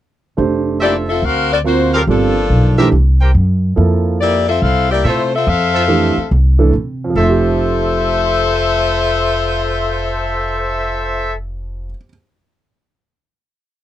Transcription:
0.37 upright bass F1, grand piano A3 D4 G4 C5
0.80 saxophone section A#3 E4 G4 D5, trumpet section F4 A4 C5 E5
1.09 saxophone section C4 F4 A4 E5
1.22 upright bass D2, saxophone section C4 F#4 A#4 F5
1.53 saxophone section C4 F#4 A#4 D5
1.64 saxophone section A#3 F4 F#4 C5, grand piano C4 F4 A#4 F5
1.94 saxophone section F#3 C4 F4 A#4, trumpet section G4 A4 A#4 F5
2.07 upright bass G1, saxophone section F3 A#3 D4 A4, grand piano G3 C4 F4 A4
2.50 upright bass B1
2.78 grand piano E3 A3 D4 G4, trumpet section G4 A#4 C5 E5
2.92 upright bass C2
3.21 trumpet section G4 A#4 C5 G5
3.34 upright bass F#2
3.76 upright bass F2, grand piano F3 A#3 E4 A4
4.20 saxophone section A#3 E4 G4 D5
4.48 saxophone section C4 F4 A4 E5
4.62 upright bass C2, saxophone section C4 E4 A4 F5
4.91 saxophone section A#3 E4 G4 D5
5.04 upright bass C3, saxophone section A3 F4 C5, trumpet section F4 A4 C5 E5
5.08 saxophone section E4
5.35 saxophone section C4 F4 A4 E5
5.47 upright bass F2, saxophone section C4 A4 E5 F5
5.74 trumpet section F4 A4 C5 E5
5.88 grand piano E3 A3 D4 G4
6.17 muted upright bass stroke
6.31 upright bass C2
6.59 grand piano E3 A3 D4 A4
6.73 upright bass C3
7.04 grand piano F2
7.10 grand piano F3
7.15 upright bass F1, grand piano A3, saxophone section F4 A4 C5 E5, trumpet section A4 C5 E5
7.23 grand piano E5
7.29 grand piano G4

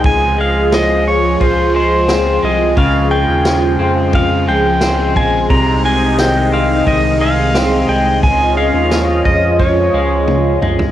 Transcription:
Already playing: clean electric guitar D#3 G#3 C4, analog synth pad G#4
0.04 analog synth bass C#2, analog synth pad F3 G#3 F4, pedal steel guitar G#5, kick, ride
0.38 clean electric guitar G#3, pedal steel guitar F5
0.72 clean electric guitar F3, pedal steel guitar D#5, snare, ride, tambourine
1.08 pedal steel guitar C#5
1.40 analog synth bass C#2, clean electric guitar F3, pedal steel guitar C5, kick, ride
1.74 clean electric guitar G#3, pedal steel guitar C5
2.09 clean electric guitar C4, snare, ride, tambourine
2.43 analog synth bass C2, clean electric guitar G#3, pedal steel guitar D#5
2.77 analog synth bass C#2, clean electric guitar C#3, pedal steel guitar F5, kick, ride
3.11 clean electric guitar G#3, pedal steel guitar G5
3.28 analog synth bass D#2
3.45 clean electric guitar F3, snare, ride, tambourine
3.79 analog synth bass F2, clean electric guitar C4
4.13 clean electric guitar F3, pedal steel guitar F5, kick, ride
4.47 analog synth bass C#2, clean electric guitar G#3, pedal steel guitar G5
4.81 clean electric guitar C4, snare, ride, tambourine
5.16 analog synth bass A#1, clean electric guitar G#3, pedal steel guitar G#5, kick
5.50 analog synth bass C2, clean electric guitar C3, analog synth pad C3 D#4 D#5, pedal steel guitar A#5, kick, ride
5.84 clean electric guitar G#3, pedal steel guitar G#5
6.18 clean electric guitar D#3, pedal steel guitar G5, snare, ride, tambourine
6.52 clean electric guitar C4, pedal steel guitar F5
6.86 analog synth bass C2, clean electric guitar D#3, pedal steel guitar D#5, kick, ride
7.20 clean electric guitar G#3, pedal steel guitar F5
7.54 clean electric guitar C4, snare, ride, tambourine
7.88 analog synth bass C2, clean electric guitar G#3, pedal steel guitar G5
8.23 analog synth bass C#2, analog synth pad C#4 F4, pedal steel guitar G#5, kick, ride
8.57 clean electric guitar G#3, pedal steel guitar F5
8.74 analog synth bass D#2
8.91 clean electric guitar F3, snare, ride, tambourine
9.25 analog synth bass F2, pedal steel guitar D#5, kick
9.59 clean electric guitar F3, pedal steel guitar C#5, kick, ride
9.94 analog synth bass C#2, clean electric guitar G#3
10.28 high tom
10.61 analog synth bass C2, clean electric guitar G#3, mid tom
10.79 floor tom

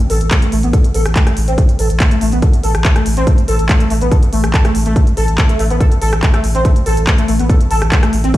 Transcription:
0.10 sub bass A1, analog synth lead A4, open hi-hat
0.21 sub bass A1, closed hi-hat
0.31 analog synth lead A3, kick, clap, closed hi-hat
0.42 analog synth lead A3, closed hi-hat
0.52 sub bass A1, analog synth lead A3, open hi-hat
0.63 sub bass A1, analog synth lead B3, closed hi-hat
0.73 analog synth lead A4, kick, closed hi-hat
0.84 closed hi-hat
0.94 sub bass A1, analog synth lead A4, open hi-hat
1.06 sub bass A1, cross-stick, closed hi-hat
1.16 analog synth lead A3, kick, clap, closed hi-hat
1.27 analog synth lead A3, cross-stick, closed hi-hat
1.37 sub bass A1, open hi-hat
1.48 sub bass A1, analog synth lead C4, closed hi-hat
1.58 analog synth lead A3, kick, closed hi-hat
1.69 closed hi-hat
1.79 sub bass A1, analog synth lead A4, open hi-hat
1.90 sub bass A1, closed hi-hat
2.00 analog synth lead A3, kick, clap, closed hi-hat
2.11 analog synth lead A3, closed hi-hat
2.21 sub bass A1, analog synth lead A3, open hi-hat
2.32 sub bass A1, analog synth lead B3, closed hi-hat
2.42 analog synth lead A4, kick, closed hi-hat
2.53 closed hi-hat
2.63 sub bass A1, analog synth lead A4, open hi-hat
2.75 sub bass A1, cross-stick, closed hi-hat
2.85 analog synth lead A3, kick, clap, closed hi-hat
2.96 analog synth lead A3, cross-stick, closed hi-hat
3.06 sub bass A1, open hi-hat
3.17 sub bass A1, analog synth lead C4, closed hi-hat
3.27 analog synth lead A3, kick, closed hi-hat
3.38 closed hi-hat
3.48 sub bass A1, analog synth lead A4, open hi-hat
3.59 sub bass A1, closed hi-hat
3.69 analog synth lead A3, kick, clap, closed hi-hat
3.80 analog synth lead A3, closed hi-hat
3.90 sub bass A1, analog synth lead A3, open hi-hat
4.01 sub bass A1, analog synth lead B3, closed hi-hat
4.11 analog synth lead A4, kick, closed hi-hat
4.23 closed hi-hat
4.33 sub bass A1, analog synth lead A3, open hi-hat
4.44 sub bass A1, cross-stick, closed hi-hat
4.54 analog synth lead A4, kick, clap, closed hi-hat
4.65 analog synth lead A3, cross-stick, closed hi-hat
4.75 sub bass A1, open hi-hat
4.86 sub bass A1, analog synth lead A3, closed hi-hat
4.96 analog synth lead A3, kick, closed hi-hat
5.07 closed hi-hat
5.17 sub bass A1, analog synth lead A4, open hi-hat
5.28 sub bass A1, closed hi-hat
5.38 analog synth lead A3, kick, clap, closed hi-hat
5.49 analog synth lead A3, closed hi-hat
5.59 sub bass A1, analog synth lead A3, open hi-hat
5.70 sub bass A1, analog synth lead B3, closed hi-hat
5.80 analog synth lead A4, kick, closed hi-hat
5.92 closed hi-hat
6.02 sub bass A1, analog synth lead A4, open hi-hat
6.13 sub bass A1, cross-stick, closed hi-hat
6.23 analog synth lead A3, kick, clap, closed hi-hat
6.34 analog synth lead A3, cross-stick, closed hi-hat
6.44 sub bass A1, open hi-hat
6.55 sub bass A1, analog synth lead C4, closed hi-hat
6.65 analog synth lead A3, kick, closed hi-hat
6.76 closed hi-hat
6.86 sub bass A1, analog synth lead A4, open hi-hat
6.97 sub bass A1, closed hi-hat
7.07 analog synth lead A3, kick, clap, closed hi-hat
7.18 analog synth lead A3, closed hi-hat
7.28 sub bass A1, analog synth lead A3, open hi-hat
7.39 sub bass A1, analog synth lead B3, closed hi-hat
7.49 analog synth lead A4, kick, closed hi-hat
7.61 closed hi-hat
7.71 sub bass A1, analog synth lead A4, open hi-hat
7.82 sub bass A1, cross-stick, closed hi-hat
7.92 analog synth lead A3, kick, clap, closed hi-hat
8.03 analog synth lead A3, cross-stick, closed hi-hat
8.13 sub bass A1, open hi-hat
8.24 sub bass A1, analog synth lead C4, closed hi-hat
8.34 analog synth lead A3, kick, closed hi-hat

